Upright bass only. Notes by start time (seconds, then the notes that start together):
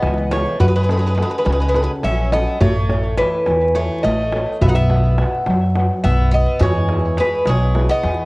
0.03 C#2
0.60 F#2
1.46 C#2
2.04 A#1
2.61 A1
3.47 E2
4.04 A1
4.61 B1
5.47 F#2
6.04 B1
6.60 E2
7.47 B1
8.04 E2